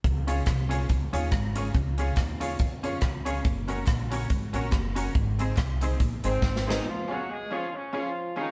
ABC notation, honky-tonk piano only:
X:1
M:4/4
L:1/8
Q:"Swing" 1/4=141
K:Db
V:1 name="Honky-tonk piano"
z [DFAd] z [DFAd] z [DFAd] z [DFAd] | z [DFAd] z [DFAd] z [DFAd] z [DFAd] | z [DGBd] z [DGBd] z [DGBd] z [DGBd] | z [CEAc] z [CEAc] z [CEAc] z [CEAc] |
z [DFAd] z [DFAd] z [DFAd] z [DFAd] |]